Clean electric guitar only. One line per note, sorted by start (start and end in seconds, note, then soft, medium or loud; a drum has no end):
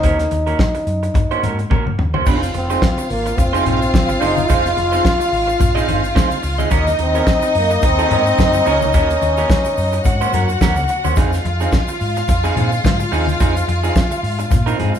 0.03 0.24 A#3 medium
0.03 0.19 C#4 medium
0.03 0.19 F#4 medium
0.03 0.18 A#4 medium
0.19 muted clean electric guitar stroke soft
0.31 muted clean electric guitar stroke soft
0.47 0.58 A#3 medium
0.47 0.59 C#4 medium
0.47 0.59 F#4 medium
0.47 0.59 A#4 medium
0.59 muted clean electric guitar stroke soft
0.75 muted clean electric guitar stroke soft
1.03 muted clean electric guitar stroke soft
1.15 muted clean electric guitar stroke soft
1.31 1.41 A#3 medium
1.31 1.42 C#4 medium
1.31 1.42 F#4 medium
1.31 1.44 C5 medium
1.42 1.59 A#3 medium
1.42 1.58 C#4 soft
1.42 1.58 F#4 medium
1.42 1.58 A#4 medium
1.59 muted clean electric guitar stroke medium
1.70 1.91 A#3 medium
1.70 1.86 C#4 medium
1.70 1.85 F#4 loud
1.70 1.85 A#4 loud
1.86 muted clean electric guitar stroke soft
1.98 muted clean electric guitar stroke medium
2.14 2.26 A#3 medium
2.14 2.26 C#4 medium
2.14 2.27 F#4 medium
2.14 2.26 C5 medium
2.26 2.47 C4 medium
2.26 2.42 D#4 medium
2.26 2.41 G#4 medium
2.26 2.41 C5 medium
2.42 muted clean electric guitar stroke medium
2.54 muted clean electric guitar stroke soft
2.70 2.81 C4 soft
2.70 2.82 D#4 soft
2.70 2.82 G#4 medium
2.70 2.82 C5 medium
2.83 muted clean electric guitar stroke soft
2.98 muted clean electric guitar stroke soft
3.26 muted clean electric guitar stroke soft
3.38 muted clean electric guitar stroke soft
3.53 3.64 C4 medium
3.53 3.65 D#4 loud
3.53 3.65 G#4 loud
3.53 3.65 C5 loud
3.65 3.82 C4 medium
3.65 3.81 D#4 medium
3.65 3.80 G#4 medium
3.65 3.80 C5 medium
3.81 muted clean electric guitar stroke soft
4.09 muted clean electric guitar stroke medium
4.21 4.41 C4 medium
4.21 4.36 D#4 medium
4.21 4.36 G#4 medium
4.21 4.35 C5 medium
4.37 muted clean electric guitar stroke soft
4.49 4.69 C4 medium
4.49 4.64 D#4 medium
4.49 4.64 G#4 medium
4.49 4.63 C5 medium
4.64 muted clean electric guitar stroke soft
4.76 muted clean electric guitar stroke soft
4.92 5.03 C4 soft
4.92 5.03 D#4 soft
4.92 5.04 G#4 medium
4.92 5.04 C5 medium
5.04 muted clean electric guitar stroke soft
5.19 muted clean electric guitar stroke soft
5.47 muted clean electric guitar stroke medium
5.59 muted clean electric guitar stroke soft
5.75 5.86 C4 medium
5.75 5.87 D#4 medium
5.75 5.87 G#4 medium
5.75 5.88 D#5 loud
5.87 6.04 C4 medium
5.87 6.03 D#4 medium
5.87 6.02 G#4 medium
5.87 6.02 C5 medium
6.03 muted clean electric guitar stroke soft
6.15 6.36 C4 medium
6.15 6.30 D#4 medium
6.15 6.30 G#4 loud
6.15 6.29 C5 loud
6.30 muted clean electric guitar stroke medium
6.42 muted clean electric guitar stroke soft
6.58 6.70 C4 medium
6.58 6.70 D#4 soft
6.58 6.71 G#4 medium
6.58 6.71 D#5 medium
6.70 6.91 A#3 medium
6.70 6.86 C#4 loud
6.70 6.86 F#4 medium
6.70 6.85 A#4 loud
6.86 muted clean electric guitar stroke soft
6.99 muted clean electric guitar stroke soft
7.15 7.26 A#3 soft
7.15 7.26 C#4 medium
7.15 7.26 F#4 medium
7.15 7.26 A#4 medium
7.27 muted clean electric guitar stroke soft
7.43 muted clean electric guitar stroke soft
7.71 muted clean electric guitar stroke medium
7.83 muted clean electric guitar stroke soft
7.99 8.10 A#3 medium
7.99 8.10 C#4 medium
7.99 8.10 F#4 loud
7.99 8.11 A#4 loud
8.11 8.27 A#3 medium
8.11 8.26 C#4 medium
8.11 8.26 F#4 medium
8.11 8.25 A#4 medium
8.26 muted clean electric guitar stroke soft
8.55 muted clean electric guitar stroke medium
8.66 8.86 A#3 medium
8.66 8.81 C#4 medium
8.66 8.81 F#4 medium
8.66 8.81 A#4 loud
8.82 muted clean electric guitar stroke soft
8.94 9.14 A#3 loud
8.94 9.09 C#4 medium
8.94 9.09 F#4 loud
8.94 9.09 A#4 medium
9.10 muted clean electric guitar stroke soft
9.22 muted clean electric guitar stroke soft
9.38 9.49 A#3 medium
9.38 9.49 C#4 medium
9.38 9.50 F#4 medium
9.38 9.50 A#4 medium
9.50 muted clean electric guitar stroke soft
9.66 muted clean electric guitar stroke soft
9.93 muted clean electric guitar stroke soft
10.06 muted clean electric guitar stroke soft
10.21 10.32 A#3 medium
10.21 10.32 C#4 medium
10.21 10.33 F#4 medium
10.21 10.34 C5 medium
10.33 10.50 A#3 medium
10.33 10.49 C#4 medium
10.33 10.49 F#4 medium
10.33 10.48 A#4 medium
10.49 muted clean electric guitar stroke soft
10.61 10.81 A#3 medium
10.61 10.77 C#4 loud
10.61 10.77 F#4 medium
10.61 10.76 A#4 medium
10.77 muted clean electric guitar stroke soft
10.89 muted clean electric guitar stroke medium
11.04 11.16 A#3 medium
11.04 11.16 C#4 medium
11.04 11.17 F#4 medium
11.04 11.17 C5 medium
11.16 11.37 F3 medium
11.16 11.33 C4 medium
11.16 11.32 D#4 medium
11.16 11.31 G#4 medium
11.33 muted clean electric guitar stroke soft
11.45 muted clean electric guitar stroke soft
11.60 11.71 F3 soft
11.60 11.71 C4 medium
11.60 11.72 D#4 medium
11.60 11.72 G#4 medium
11.73 muted clean electric guitar stroke soft
11.88 muted clean electric guitar stroke soft
12.17 muted clean electric guitar stroke soft
12.29 muted clean electric guitar stroke soft
12.44 12.55 F3 medium
12.44 12.56 C4 medium
12.44 12.56 D#4 medium
12.44 12.57 G#4 medium
12.56 12.73 F3 medium
12.56 12.71 C4 medium
12.56 12.71 D#4 medium
12.56 12.71 G#4 medium
12.72 muted clean electric guitar stroke soft
13.00 muted clean electric guitar stroke soft
13.12 13.32 F3 medium
13.12 13.27 C4 loud
13.12 13.27 D#4 loud
13.12 13.27 G#4 medium
13.28 muted clean electric guitar stroke soft
13.40 13.60 F3 medium
13.40 13.55 C4 medium
13.40 13.55 D#4 loud
13.40 13.54 G#4 loud
13.55 muted clean electric guitar stroke soft
13.68 muted clean electric guitar stroke soft
13.83 13.94 F3 medium
13.83 13.95 C4 medium
13.83 13.95 D#4 medium
13.83 13.95 G#4 medium
13.95 muted clean electric guitar stroke soft
14.11 muted clean electric guitar stroke soft
14.39 muted clean electric guitar stroke medium
14.51 muted clean electric guitar stroke soft
14.66 14.77 F3 medium
14.66 14.77 C4 loud
14.66 14.78 D#4 loud
14.66 14.79 A#4 medium
14.78 14.95 F3 medium
14.78 14.94 C4 medium
14.78 14.94 D#4 medium
14.78 14.93 G#4 medium
14.94 muted clean electric guitar stroke soft